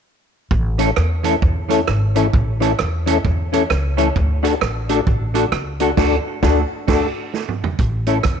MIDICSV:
0, 0, Header, 1, 6, 480
1, 0, Start_track
1, 0, Key_signature, 3, "major"
1, 0, Tempo, 455235
1, 540, Time_signature, 4, 2, 24, 8
1, 8857, End_track
2, 0, Start_track
2, 0, Title_t, "Tonewheel organ"
2, 0, Program_c, 0, 16
2, 828, Note_on_c, 0, 61, 90
2, 836, Note_on_c, 0, 64, 82
2, 840, Note_on_c, 0, 69, 96
2, 954, Note_off_c, 0, 61, 0
2, 958, Note_off_c, 0, 64, 0
2, 960, Note_off_c, 0, 69, 0
2, 1311, Note_on_c, 0, 61, 84
2, 1316, Note_on_c, 0, 64, 75
2, 1321, Note_on_c, 0, 69, 95
2, 1435, Note_off_c, 0, 61, 0
2, 1438, Note_off_c, 0, 64, 0
2, 1440, Note_off_c, 0, 69, 0
2, 1790, Note_on_c, 0, 61, 89
2, 1796, Note_on_c, 0, 64, 82
2, 1802, Note_on_c, 0, 69, 94
2, 1915, Note_off_c, 0, 61, 0
2, 1917, Note_off_c, 0, 64, 0
2, 1920, Note_off_c, 0, 69, 0
2, 2271, Note_on_c, 0, 61, 88
2, 2280, Note_on_c, 0, 64, 75
2, 2282, Note_on_c, 0, 69, 103
2, 2395, Note_off_c, 0, 61, 0
2, 2399, Note_off_c, 0, 64, 0
2, 2400, Note_off_c, 0, 69, 0
2, 2749, Note_on_c, 0, 61, 94
2, 2753, Note_on_c, 0, 64, 83
2, 2761, Note_on_c, 0, 69, 97
2, 2873, Note_off_c, 0, 61, 0
2, 2876, Note_off_c, 0, 64, 0
2, 2879, Note_off_c, 0, 69, 0
2, 3230, Note_on_c, 0, 61, 87
2, 3237, Note_on_c, 0, 64, 82
2, 3241, Note_on_c, 0, 69, 101
2, 3354, Note_off_c, 0, 61, 0
2, 3357, Note_off_c, 0, 64, 0
2, 3359, Note_off_c, 0, 69, 0
2, 3714, Note_on_c, 0, 61, 94
2, 3720, Note_on_c, 0, 64, 81
2, 3728, Note_on_c, 0, 69, 102
2, 3836, Note_off_c, 0, 61, 0
2, 3838, Note_off_c, 0, 64, 0
2, 3843, Note_off_c, 0, 69, 0
2, 4193, Note_on_c, 0, 61, 89
2, 4198, Note_on_c, 0, 64, 80
2, 4204, Note_on_c, 0, 69, 100
2, 4315, Note_off_c, 0, 61, 0
2, 4317, Note_off_c, 0, 64, 0
2, 4321, Note_off_c, 0, 69, 0
2, 4671, Note_on_c, 0, 62, 92
2, 4677, Note_on_c, 0, 66, 85
2, 4683, Note_on_c, 0, 69, 103
2, 4794, Note_off_c, 0, 62, 0
2, 4797, Note_off_c, 0, 66, 0
2, 4800, Note_off_c, 0, 69, 0
2, 5159, Note_on_c, 0, 62, 86
2, 5164, Note_on_c, 0, 66, 79
2, 5172, Note_on_c, 0, 69, 101
2, 5278, Note_off_c, 0, 62, 0
2, 5280, Note_off_c, 0, 66, 0
2, 5284, Note_off_c, 0, 69, 0
2, 5633, Note_on_c, 0, 62, 89
2, 5639, Note_on_c, 0, 66, 83
2, 5647, Note_on_c, 0, 69, 98
2, 5755, Note_off_c, 0, 62, 0
2, 5758, Note_off_c, 0, 66, 0
2, 5762, Note_off_c, 0, 69, 0
2, 6115, Note_on_c, 0, 62, 87
2, 6119, Note_on_c, 0, 66, 78
2, 6126, Note_on_c, 0, 69, 93
2, 6236, Note_off_c, 0, 62, 0
2, 6238, Note_off_c, 0, 66, 0
2, 6241, Note_off_c, 0, 69, 0
2, 6294, Note_on_c, 0, 62, 98
2, 6301, Note_on_c, 0, 66, 104
2, 6307, Note_on_c, 0, 69, 108
2, 6495, Note_off_c, 0, 62, 0
2, 6499, Note_off_c, 0, 66, 0
2, 6502, Note_off_c, 0, 69, 0
2, 6773, Note_on_c, 0, 62, 103
2, 6777, Note_on_c, 0, 66, 96
2, 6786, Note_on_c, 0, 69, 105
2, 6975, Note_off_c, 0, 62, 0
2, 6977, Note_off_c, 0, 66, 0
2, 6982, Note_off_c, 0, 69, 0
2, 7252, Note_on_c, 0, 62, 93
2, 7258, Note_on_c, 0, 66, 98
2, 7265, Note_on_c, 0, 69, 93
2, 7454, Note_off_c, 0, 62, 0
2, 7457, Note_off_c, 0, 66, 0
2, 7462, Note_off_c, 0, 69, 0
2, 8508, Note_on_c, 0, 61, 87
2, 8513, Note_on_c, 0, 64, 80
2, 8519, Note_on_c, 0, 69, 94
2, 8634, Note_off_c, 0, 61, 0
2, 8636, Note_off_c, 0, 64, 0
2, 8639, Note_off_c, 0, 69, 0
2, 8857, End_track
3, 0, Start_track
3, 0, Title_t, "Hollow-body jazz guitar"
3, 0, Program_c, 1, 26
3, 825, Note_on_c, 1, 52, 84
3, 834, Note_on_c, 1, 57, 88
3, 837, Note_on_c, 1, 61, 91
3, 846, Note_on_c, 1, 69, 91
3, 924, Note_off_c, 1, 52, 0
3, 929, Note_off_c, 1, 57, 0
3, 930, Note_off_c, 1, 61, 0
3, 935, Note_off_c, 1, 69, 0
3, 1300, Note_on_c, 1, 52, 90
3, 1306, Note_on_c, 1, 57, 81
3, 1314, Note_on_c, 1, 61, 84
3, 1320, Note_on_c, 1, 69, 92
3, 1402, Note_off_c, 1, 52, 0
3, 1405, Note_off_c, 1, 57, 0
3, 1409, Note_off_c, 1, 61, 0
3, 1412, Note_off_c, 1, 69, 0
3, 1777, Note_on_c, 1, 52, 84
3, 1785, Note_on_c, 1, 57, 94
3, 1785, Note_on_c, 1, 61, 96
3, 1795, Note_on_c, 1, 69, 99
3, 1880, Note_off_c, 1, 52, 0
3, 1884, Note_off_c, 1, 57, 0
3, 1884, Note_off_c, 1, 61, 0
3, 1889, Note_off_c, 1, 69, 0
3, 2274, Note_on_c, 1, 52, 81
3, 2277, Note_on_c, 1, 57, 88
3, 2285, Note_on_c, 1, 61, 87
3, 2290, Note_on_c, 1, 69, 83
3, 2368, Note_off_c, 1, 52, 0
3, 2370, Note_off_c, 1, 57, 0
3, 2374, Note_off_c, 1, 61, 0
3, 2377, Note_off_c, 1, 69, 0
3, 2744, Note_on_c, 1, 52, 97
3, 2758, Note_on_c, 1, 57, 97
3, 2759, Note_on_c, 1, 61, 103
3, 2770, Note_on_c, 1, 69, 97
3, 2843, Note_off_c, 1, 52, 0
3, 2850, Note_off_c, 1, 57, 0
3, 2851, Note_off_c, 1, 61, 0
3, 2856, Note_off_c, 1, 69, 0
3, 3229, Note_on_c, 1, 52, 81
3, 3241, Note_on_c, 1, 61, 93
3, 3242, Note_on_c, 1, 57, 82
3, 3247, Note_on_c, 1, 69, 91
3, 3325, Note_off_c, 1, 52, 0
3, 3332, Note_off_c, 1, 57, 0
3, 3332, Note_off_c, 1, 61, 0
3, 3334, Note_off_c, 1, 69, 0
3, 3720, Note_on_c, 1, 52, 86
3, 3723, Note_on_c, 1, 57, 84
3, 3729, Note_on_c, 1, 61, 96
3, 3732, Note_on_c, 1, 69, 89
3, 3811, Note_off_c, 1, 52, 0
3, 3812, Note_off_c, 1, 57, 0
3, 3815, Note_off_c, 1, 61, 0
3, 3817, Note_off_c, 1, 69, 0
3, 4188, Note_on_c, 1, 57, 88
3, 4189, Note_on_c, 1, 52, 82
3, 4192, Note_on_c, 1, 61, 91
3, 4199, Note_on_c, 1, 69, 90
3, 4285, Note_off_c, 1, 52, 0
3, 4285, Note_off_c, 1, 57, 0
3, 4287, Note_off_c, 1, 61, 0
3, 4290, Note_off_c, 1, 69, 0
3, 4668, Note_on_c, 1, 57, 81
3, 4671, Note_on_c, 1, 62, 86
3, 4682, Note_on_c, 1, 66, 90
3, 4684, Note_on_c, 1, 69, 98
3, 4765, Note_off_c, 1, 57, 0
3, 4766, Note_off_c, 1, 62, 0
3, 4772, Note_off_c, 1, 66, 0
3, 4773, Note_off_c, 1, 69, 0
3, 5161, Note_on_c, 1, 57, 75
3, 5166, Note_on_c, 1, 62, 80
3, 5173, Note_on_c, 1, 66, 85
3, 5174, Note_on_c, 1, 69, 89
3, 5251, Note_off_c, 1, 57, 0
3, 5253, Note_off_c, 1, 62, 0
3, 5257, Note_off_c, 1, 66, 0
3, 5257, Note_off_c, 1, 69, 0
3, 5630, Note_on_c, 1, 57, 89
3, 5635, Note_on_c, 1, 62, 89
3, 5642, Note_on_c, 1, 66, 90
3, 5647, Note_on_c, 1, 69, 89
3, 5726, Note_off_c, 1, 57, 0
3, 5728, Note_off_c, 1, 62, 0
3, 5731, Note_off_c, 1, 66, 0
3, 5734, Note_off_c, 1, 69, 0
3, 6121, Note_on_c, 1, 57, 81
3, 6127, Note_on_c, 1, 62, 86
3, 6132, Note_on_c, 1, 66, 92
3, 6132, Note_on_c, 1, 69, 97
3, 6211, Note_off_c, 1, 57, 0
3, 6214, Note_off_c, 1, 62, 0
3, 6216, Note_off_c, 1, 66, 0
3, 6217, Note_off_c, 1, 69, 0
3, 6297, Note_on_c, 1, 57, 98
3, 6302, Note_on_c, 1, 62, 98
3, 6310, Note_on_c, 1, 66, 107
3, 6317, Note_on_c, 1, 69, 103
3, 6496, Note_off_c, 1, 57, 0
3, 6500, Note_off_c, 1, 62, 0
3, 6504, Note_off_c, 1, 66, 0
3, 6508, Note_off_c, 1, 69, 0
3, 6778, Note_on_c, 1, 57, 99
3, 6782, Note_on_c, 1, 62, 95
3, 6792, Note_on_c, 1, 66, 92
3, 6795, Note_on_c, 1, 69, 97
3, 6977, Note_off_c, 1, 57, 0
3, 6980, Note_off_c, 1, 62, 0
3, 6985, Note_off_c, 1, 66, 0
3, 6987, Note_off_c, 1, 69, 0
3, 7249, Note_on_c, 1, 57, 103
3, 7264, Note_on_c, 1, 66, 98
3, 7265, Note_on_c, 1, 62, 95
3, 7270, Note_on_c, 1, 69, 98
3, 7452, Note_off_c, 1, 57, 0
3, 7461, Note_off_c, 1, 62, 0
3, 7461, Note_off_c, 1, 66, 0
3, 7464, Note_off_c, 1, 69, 0
3, 8507, Note_on_c, 1, 57, 80
3, 8512, Note_on_c, 1, 61, 80
3, 8516, Note_on_c, 1, 64, 84
3, 8525, Note_on_c, 1, 69, 89
3, 8605, Note_off_c, 1, 57, 0
3, 8608, Note_off_c, 1, 61, 0
3, 8609, Note_off_c, 1, 64, 0
3, 8614, Note_off_c, 1, 69, 0
3, 8857, End_track
4, 0, Start_track
4, 0, Title_t, "Upright bass"
4, 0, Program_c, 2, 32
4, 536, Note_on_c, 2, 33, 107
4, 945, Note_off_c, 2, 33, 0
4, 1023, Note_on_c, 2, 40, 101
4, 1429, Note_off_c, 2, 40, 0
4, 1499, Note_on_c, 2, 40, 95
4, 1906, Note_off_c, 2, 40, 0
4, 1985, Note_on_c, 2, 32, 89
4, 2389, Note_off_c, 2, 32, 0
4, 2464, Note_on_c, 2, 33, 103
4, 2869, Note_off_c, 2, 33, 0
4, 2949, Note_on_c, 2, 40, 97
4, 3352, Note_off_c, 2, 40, 0
4, 3428, Note_on_c, 2, 40, 92
4, 3831, Note_off_c, 2, 40, 0
4, 3905, Note_on_c, 2, 37, 96
4, 4309, Note_off_c, 2, 37, 0
4, 4389, Note_on_c, 2, 38, 107
4, 4792, Note_off_c, 2, 38, 0
4, 4868, Note_on_c, 2, 33, 85
4, 5271, Note_off_c, 2, 33, 0
4, 5345, Note_on_c, 2, 33, 98
4, 5749, Note_off_c, 2, 33, 0
4, 5820, Note_on_c, 2, 37, 90
4, 6226, Note_off_c, 2, 37, 0
4, 6298, Note_on_c, 2, 38, 105
4, 6497, Note_off_c, 2, 38, 0
4, 6780, Note_on_c, 2, 38, 110
4, 6978, Note_off_c, 2, 38, 0
4, 7257, Note_on_c, 2, 38, 96
4, 7457, Note_off_c, 2, 38, 0
4, 8217, Note_on_c, 2, 33, 103
4, 8626, Note_off_c, 2, 33, 0
4, 8698, Note_on_c, 2, 40, 91
4, 8857, Note_off_c, 2, 40, 0
4, 8857, End_track
5, 0, Start_track
5, 0, Title_t, "Muted hollow-body jazz guitar strokes"
5, 1017, Note_on_c, 9, 29, 33
5, 1122, Note_off_c, 9, 29, 0
5, 2938, Note_on_c, 9, 29, 37
5, 3043, Note_off_c, 9, 29, 0
5, 4867, Note_on_c, 9, 29, 33
5, 4972, Note_off_c, 9, 29, 0
5, 8695, Note_on_c, 9, 29, 37
5, 8801, Note_off_c, 9, 29, 0
5, 8857, End_track
6, 0, Start_track
6, 0, Title_t, "Drums"
6, 537, Note_on_c, 9, 36, 112
6, 642, Note_off_c, 9, 36, 0
6, 830, Note_on_c, 9, 42, 82
6, 936, Note_off_c, 9, 42, 0
6, 1016, Note_on_c, 9, 37, 107
6, 1121, Note_off_c, 9, 37, 0
6, 1309, Note_on_c, 9, 42, 92
6, 1414, Note_off_c, 9, 42, 0
6, 1500, Note_on_c, 9, 36, 111
6, 1605, Note_off_c, 9, 36, 0
6, 1795, Note_on_c, 9, 42, 85
6, 1901, Note_off_c, 9, 42, 0
6, 1977, Note_on_c, 9, 37, 117
6, 2082, Note_off_c, 9, 37, 0
6, 2273, Note_on_c, 9, 42, 86
6, 2378, Note_off_c, 9, 42, 0
6, 2461, Note_on_c, 9, 36, 120
6, 2567, Note_off_c, 9, 36, 0
6, 2760, Note_on_c, 9, 42, 84
6, 2865, Note_off_c, 9, 42, 0
6, 2938, Note_on_c, 9, 37, 106
6, 3044, Note_off_c, 9, 37, 0
6, 3239, Note_on_c, 9, 42, 96
6, 3344, Note_off_c, 9, 42, 0
6, 3423, Note_on_c, 9, 36, 111
6, 3528, Note_off_c, 9, 36, 0
6, 3726, Note_on_c, 9, 42, 88
6, 3832, Note_off_c, 9, 42, 0
6, 3902, Note_on_c, 9, 37, 123
6, 4007, Note_off_c, 9, 37, 0
6, 4198, Note_on_c, 9, 42, 84
6, 4303, Note_off_c, 9, 42, 0
6, 4386, Note_on_c, 9, 36, 119
6, 4491, Note_off_c, 9, 36, 0
6, 4687, Note_on_c, 9, 42, 82
6, 4793, Note_off_c, 9, 42, 0
6, 4864, Note_on_c, 9, 37, 109
6, 4969, Note_off_c, 9, 37, 0
6, 5158, Note_on_c, 9, 42, 89
6, 5263, Note_off_c, 9, 42, 0
6, 5344, Note_on_c, 9, 36, 110
6, 5449, Note_off_c, 9, 36, 0
6, 5639, Note_on_c, 9, 42, 84
6, 5744, Note_off_c, 9, 42, 0
6, 5820, Note_on_c, 9, 37, 110
6, 5926, Note_off_c, 9, 37, 0
6, 6114, Note_on_c, 9, 42, 85
6, 6219, Note_off_c, 9, 42, 0
6, 6299, Note_on_c, 9, 36, 111
6, 6299, Note_on_c, 9, 38, 108
6, 6299, Note_on_c, 9, 49, 88
6, 6405, Note_off_c, 9, 36, 0
6, 6405, Note_off_c, 9, 38, 0
6, 6405, Note_off_c, 9, 49, 0
6, 6777, Note_on_c, 9, 36, 111
6, 6777, Note_on_c, 9, 38, 106
6, 6882, Note_off_c, 9, 38, 0
6, 6883, Note_off_c, 9, 36, 0
6, 7256, Note_on_c, 9, 36, 106
6, 7258, Note_on_c, 9, 38, 109
6, 7258, Note_on_c, 9, 49, 82
6, 7361, Note_off_c, 9, 36, 0
6, 7363, Note_off_c, 9, 38, 0
6, 7363, Note_off_c, 9, 49, 0
6, 7736, Note_on_c, 9, 38, 56
6, 7841, Note_off_c, 9, 38, 0
6, 7893, Note_on_c, 9, 45, 69
6, 7998, Note_off_c, 9, 45, 0
6, 8053, Note_on_c, 9, 43, 106
6, 8158, Note_off_c, 9, 43, 0
6, 8209, Note_on_c, 9, 42, 75
6, 8213, Note_on_c, 9, 36, 111
6, 8314, Note_off_c, 9, 42, 0
6, 8318, Note_off_c, 9, 36, 0
6, 8504, Note_on_c, 9, 42, 77
6, 8609, Note_off_c, 9, 42, 0
6, 8681, Note_on_c, 9, 37, 102
6, 8687, Note_on_c, 9, 42, 64
6, 8697, Note_on_c, 9, 36, 110
6, 8787, Note_off_c, 9, 37, 0
6, 8792, Note_off_c, 9, 42, 0
6, 8802, Note_off_c, 9, 36, 0
6, 8857, End_track
0, 0, End_of_file